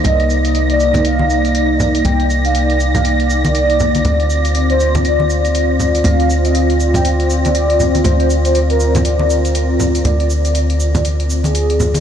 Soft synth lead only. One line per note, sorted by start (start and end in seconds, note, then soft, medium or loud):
0.05 0.29 D#5 loud
0.45 0.59 D#5 medium
0.70 0.94 D5 medium
1.05 1.38 F5 loud
2.05 2.29 G5 loud
2.45 2.59 F5 medium
2.95 3.09 F5 medium
3.45 3.97 D5 medium
4.05 4.29 D5 loud
4.45 4.59 D5 medium
4.70 4.94 C5 loud
5.05 5.38 D5 loud
6.05 6.29 F5 loud
6.45 6.59 D#5 medium
6.95 7.09 G5 medium
7.45 7.97 D5 loud
8.05 8.29 C5 loud
8.45 8.59 C5 medium
8.70 8.94 A#4 loud
9.05 9.38 D5 medium
10.05 10.29 D5 loud
10.45 10.59 D5 medium
10.95 11.09 D5 medium
11.45 11.97 G#4 loud